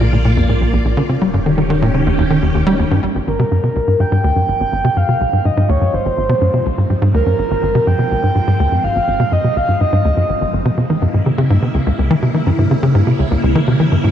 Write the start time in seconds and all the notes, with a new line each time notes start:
Already playing: A#1 A#3 F4 D5
0.01 A#2
0.13 A#2
0.25 A#2
0.37 F2
0.49 A2
0.61 A#1
0.73 A#1
0.85 A#1
0.97 D3
1.09 D#1 C#3 D#3 C#4 G4
1.22 G3
1.34 G2
1.46 D#3
1.58 D#3
1.70 D#3
1.82 A#2
1.94 C#3
2.06 D#2
2.18 D#2
2.30 D#3
2.42 D#2
2.55 D#2
2.67 G3
2.79 D#2
2.91 G2
3.03 G#1 G#2 F3 C4
3.15 G#1
3.27 G#1 A#4
3.39 C3
3.51 G2
3.63 C3
3.76 C2
3.88 G#2
4.00 G#2 G5
4.12 G#2
4.24 D#2
4.36 G2
4.48 G#1
4.60 G#1
4.72 G#1
4.84 C3
4.96 G2 F5
5.08 C3
5.21 C2
5.33 G#2
5.45 G#2 D#5
5.57 G#2
5.69 D#2 C#5
5.81 G2
5.93 G#1 C5
6.05 G#1
6.17 G#1
6.29 C3
6.41 G2
6.54 C3
6.66 C2
6.78 G#2
6.90 G#2
7.02 G#2
7.14 D#2 A#4
7.26 G2
7.38 G#1
7.51 G#1
7.63 G#1
7.75 C3
7.87 G2 G5
7.99 C3
8.11 C2
8.23 G#2
8.35 G#2
8.47 G#2
8.60 D#2
8.72 G2
8.84 G#1 F5
8.96 G#1
9.08 G#1
9.20 C3
9.32 G2 D#5
9.44 C3
9.56 C2 F5
9.68 G#2
9.81 G#2 D#5
9.93 G#2
10.05 D#2
10.17 G2
10.29 G#1
10.41 G#1
10.53 G#1
10.65 C3
10.77 C3 C#3 A#3 E4
10.90 E3
11.02 G2
11.14 G#2
11.26 C#3
11.38 C#3
11.50 G#2
11.62 C3
11.74 C#2
11.86 C#2
11.99 C#2
12.10 E3
12.22 C3
12.34 E3
12.47 G2
12.58 G#2
12.71 C#3
12.83 C#3
12.95 G#2
13.07 C3
13.19 C#2
13.31 C#2
13.43 C#2
13.55 E3
13.68 C3
13.80 E3
13.92 G2
14.04 G#2